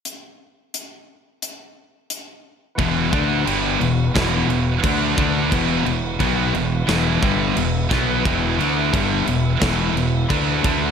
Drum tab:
CC |--------|xxxxxxxx|xxxxxxxx|xxxxxxxx|
HH |x-x-x-x-|--------|--------|--------|
SD |--------|----o---|----o--o|----o---|
BD |--------|oo--o-oo|o-o--o-o|o-o-o-oo|